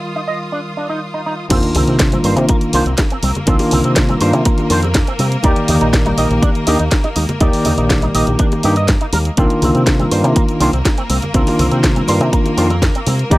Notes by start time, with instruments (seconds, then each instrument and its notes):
Already playing: tine electric piano D#3 G3 A#4, violin section F4 D#6
0.16 clean electric guitar D#4
0.28 clean electric guitar D#5
0.52 clean electric guitar D4
0.77 clean electric guitar D4
0.89 clean electric guitar D#4
1.14 clean electric guitar D#4
1.26 clean electric guitar D#4
1.49 fingered electric bass C2, tine electric piano D#3 A#3 D4 F4, violin section A#3 A#4, clean electric guitar C4, kick, closed hi-hat, crash, sub drop, high bongo, cabasa
1.63 closed hi-hat
1.75 fingered electric bass C2, clean electric guitar C4, open hi-hat, high bongo, low conga, cabasa
1.87 fingered electric bass C3, clean electric guitar C4, closed hi-hat, cabasa
1.99 kick, snare, closed hi-hat, cabasa
2.12 clean electric guitar C4, closed hi-hat, high bongo, high conga, cabasa
2.24 fingered electric bass G2, tine electric piano D#3 A#3 D4 F4, clean electric guitar C5, open hi-hat, cabasa
2.36 fingered electric bass C3, closed hi-hat, high bongo, cabasa
2.49 clean electric guitar A#3, kick, closed hi-hat, cabasa
2.61 closed hi-hat, cabasa
2.73 fingered electric bass C2, tine electric piano D#3 A#3 D4 F4, clean electric guitar C5, open hi-hat, high bongo, cabasa
2.86 fingered electric bass C2, clean electric guitar C4, closed hi-hat, cabasa
2.98 kick, snare, closed hi-hat, high bongo, cabasa
3.10 clean electric guitar C4, closed hi-hat
3.23 fingered electric bass C2, clean electric guitar C4, open hi-hat, high conga, cabasa
3.35 closed hi-hat, high bongo, low conga, cabasa
3.46 fingered electric bass C2, tine electric piano D#3 A#3 D4 F4, clean electric guitar C4, kick, closed hi-hat, cabasa
3.59 open hi-hat, high bongo
3.71 fingered electric bass C2, clean electric guitar C4, open hi-hat, low conga, cabasa
3.84 fingered electric bass C3, clean electric guitar C4, closed hi-hat, cabasa
3.96 kick, snare, closed hi-hat, high bongo, cabasa
4.09 clean electric guitar C4, closed hi-hat, high conga, cabasa
4.20 fingered electric bass G2, tine electric piano D#3 A#3 D4 F4, clean electric guitar C5, open hi-hat, high bongo, cabasa
4.33 fingered electric bass C3, closed hi-hat, cabasa
4.45 clean electric guitar A#3, kick, closed hi-hat, cabasa
4.58 closed hi-hat, high bongo, cabasa
4.70 fingered electric bass F2, tine electric piano D#3 A#3 D4 F4, clean electric guitar C5, open hi-hat, cabasa
4.83 clean electric guitar C4, closed hi-hat, high bongo, cabasa
4.94 kick, snare, closed hi-hat, cabasa
5.07 clean electric guitar C4, closed hi-hat
5.19 fingered electric bass C3, clean electric guitar C4, open hi-hat, high bongo, high conga, cabasa
5.32 closed hi-hat, cabasa
5.43 fingered electric bass D#2, tine electric piano D#3 A#3 G4 D5, clean electric guitar D#4, kick, closed hi-hat, high bongo, cabasa
5.56 closed hi-hat
5.68 fingered electric bass D#2, clean electric guitar D#4, open hi-hat, low conga, cabasa
5.81 fingered electric bass A#1, clean electric guitar D#4, closed hi-hat, high bongo, cabasa
5.93 kick, snare, closed hi-hat, cabasa
6.06 clean electric guitar D#4, closed hi-hat, high bongo, high conga, cabasa
6.18 fingered electric bass A#1, tine electric piano D#3 A#3 G4, clean electric guitar D#5, open hi-hat, cabasa
6.30 fingered electric bass A#1, closed hi-hat, cabasa
6.42 clean electric guitar D4, kick, closed hi-hat, high bongo, cabasa
6.55 closed hi-hat, cabasa
6.67 fingered electric bass D#2, tine electric piano D#3 A#3 D4 G4, clean electric guitar D#5, open hi-hat, high bongo, cabasa
6.79 fingered electric bass D#2, clean electric guitar D#4, closed hi-hat, cabasa
6.91 kick, snare, closed hi-hat, cabasa
7.04 clean electric guitar D#4, closed hi-hat, high bongo
7.16 fingered electric bass D#2, clean electric guitar D#4, open hi-hat, high conga, cabasa
7.29 closed hi-hat, high bongo, low conga, cabasa
7.41 fingered electric bass D#2, tine electric piano D#3 A#3 G4 D5, clean electric guitar D#4, kick, closed hi-hat, cabasa
7.53 open hi-hat
7.65 fingered electric bass D#2, clean electric guitar D#4, open hi-hat, high bongo, low conga, cabasa
7.78 fingered electric bass A#1, clean electric guitar D#4, closed hi-hat, cabasa
7.90 kick, snare, closed hi-hat, high bongo, cabasa
8.02 clean electric guitar D#4, closed hi-hat, high conga, cabasa
8.15 fingered electric bass A#1, tine electric piano D#3 A#3 G4, clean electric guitar D#5, open hi-hat, cabasa
8.27 fingered electric bass A#1, closed hi-hat, high bongo, cabasa
8.39 clean electric guitar D4, kick, closed hi-hat, cabasa
8.52 closed hi-hat, high bongo, cabasa
8.63 fingered electric bass G2, tine electric piano D#3 A#3 D4 G4, clean electric guitar D#4, open hi-hat, cabasa
8.76 clean electric guitar D#5, closed hi-hat, cabasa
8.88 kick, snare, closed hi-hat, high bongo, cabasa
9.01 clean electric guitar D#4, closed hi-hat
9.13 fingered electric bass D#2, clean electric guitar A#4, open hi-hat, high bongo, high conga, cabasa
9.25 closed hi-hat, cabasa
9.37 fingered electric bass C2, tine electric piano D#3 A#3 D4 F4, violin section A#3 A#4, clean electric guitar C4, kick, closed hi-hat, high bongo, cabasa
9.50 closed hi-hat
9.62 fingered electric bass C2, clean electric guitar C4, open hi-hat, high bongo, low conga, cabasa
9.75 fingered electric bass C3, clean electric guitar C4, closed hi-hat, cabasa
9.87 kick, snare, closed hi-hat, cabasa
10.00 clean electric guitar C4, closed hi-hat, high bongo, high conga, cabasa
10.11 fingered electric bass G2, tine electric piano D#3 A#3 D4 F4, clean electric guitar C5, open hi-hat, cabasa
10.24 fingered electric bass C3, closed hi-hat, high bongo, cabasa
10.36 clean electric guitar A#3, kick, closed hi-hat, cabasa
10.49 closed hi-hat, cabasa
10.60 fingered electric bass C2, tine electric piano D#3 A#3 D4 F4, clean electric guitar C5, open hi-hat, high bongo, cabasa
10.73 fingered electric bass C2, clean electric guitar C4, closed hi-hat, cabasa
10.85 kick, snare, closed hi-hat, high bongo, cabasa
10.98 clean electric guitar C4, closed hi-hat
11.10 fingered electric bass C2, clean electric guitar C4, open hi-hat, high conga, cabasa
11.22 closed hi-hat, high bongo, low conga, cabasa
11.34 fingered electric bass C2, tine electric piano D#3 A#3 D4 F4, clean electric guitar C4, kick, closed hi-hat, cabasa
11.47 open hi-hat, high bongo
11.59 fingered electric bass C2, clean electric guitar C4, open hi-hat, low conga, cabasa
11.71 fingered electric bass C3, clean electric guitar C4, closed hi-hat, cabasa
11.84 kick, snare, closed hi-hat, high bongo, cabasa
11.96 clean electric guitar C4, closed hi-hat, high conga, cabasa
12.08 fingered electric bass G2, tine electric piano D#3 A#3 D4 F4, clean electric guitar C5, open hi-hat, high bongo, cabasa
12.21 fingered electric bass C3, closed hi-hat, cabasa
12.33 clean electric guitar A#3, kick, closed hi-hat, cabasa
12.46 closed hi-hat, high bongo, cabasa
12.57 fingered electric bass F2, tine electric piano D#3 A#3 D4 F4, clean electric guitar C5, open hi-hat, cabasa
12.70 clean electric guitar C4, closed hi-hat, high bongo, cabasa
12.82 kick, snare, closed hi-hat, cabasa
12.95 clean electric guitar C4, closed hi-hat
13.06 fingered electric bass C3, clean electric guitar C4, open hi-hat, high bongo, high conga, cabasa
13.19 closed hi-hat, cabasa
13.30 fingered electric bass D#2, tine electric piano D#3 A#3 G4 D5, clean electric guitar D#4, kick, closed hi-hat, high bongo, cabasa